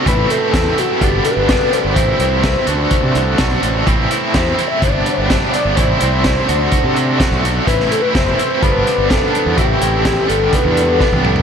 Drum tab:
HH |x-x-x-x-x-x-x-x-|x-x-x-x-x-x-x-x-|x-x-x-x-x-x-x-x-|x-x-x-x-x-x-x-x-|
SD |----o-------o---|----o-------o---|----o-------o---|----o-------o---|
T1 |----------------|----------------|----------------|----------------|
T2 |----------------|----------------|----------------|----------------|
FT |----------------|----------------|----------------|----------------|
BD |o---o---o---o---|o---o---o---o---|o---o---o---o---|o---o---o---o---|

HH |x-x-x-x-x-x-x-x-|x-x-x-x-x-x-----|
SD |-o--o-------o---|----o-------o---|
T1 |----------------|-------------o--|
T2 |----------------|--------------o-|
FT |----------------|---------------o|
BD |o---o---o---o---|o---o---o---o---|